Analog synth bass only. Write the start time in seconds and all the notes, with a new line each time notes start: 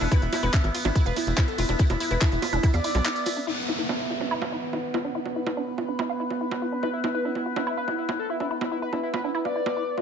0.01 E1
0.22 E1
0.43 E1
0.64 G#1
0.85 G#1
1.06 E1
1.27 E1
1.58 E1
1.69 E1
1.90 E1
2.11 E1
2.32 E1
2.53 E1
2.74 E2
2.95 B1